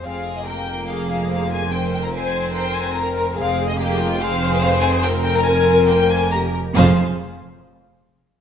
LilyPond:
<<
  \new Staff \with { instrumentName = "Violin section" } { \time 4/4 \key f \minor \tempo 4 = 143 f''8. ees''16 g''4 f''4 f''8 aes''8 | g''8 g''16 bes''16 aes''4 g''8 aes''8 bes''8 bes'8 | f''8. ees''16 g''4 f''4 f''8 aes''8 | g''8 g''16 bes''16 aes''4 g''8 aes''8 bes''8 r8 |
f''8 r2. r8 | }
  \new Staff \with { instrumentName = "Viola section" } { \time 4/4 \key f \minor r2 aes'2 | bes'4 c''4 c''4 bes'4 | aes'2 c''2 | bes'2. g'8 r8 |
<f f'>8 r2. r8 | }
  \new Staff \with { instrumentName = "Violin section" } { \time 4/4 \key f \minor << { aes'4 bes'4 aes'4 c''4~ | c''4 c''4 bes'2 | aes'4 g'8 f'8 aes'8 aes'4. | bes'2 c''4 bes'8 r8 |
<aes' c''>8 r2. r8 | } \\ { c'4 bes2. | c'1 | c'4 bes4 c'2~ | c'4 c'4 bes4 bes8 r8 |
r1 | } >> }
  \new Staff \with { instrumentName = "Cello section" } { \clef bass \time 4/4 \key f \minor f,1~ | f,1 | f,1~ | f,2.~ f,8 r8 |
f,8 r2. r8 | }
  \new Staff \with { instrumentName = "Double bass section" } { \clef bass \time 4/4 \key f \minor f,,1~ | f,,1 | f,,1~ | f,,2.~ f,,8 r8 |
f,,8 r2. r8 | }
>>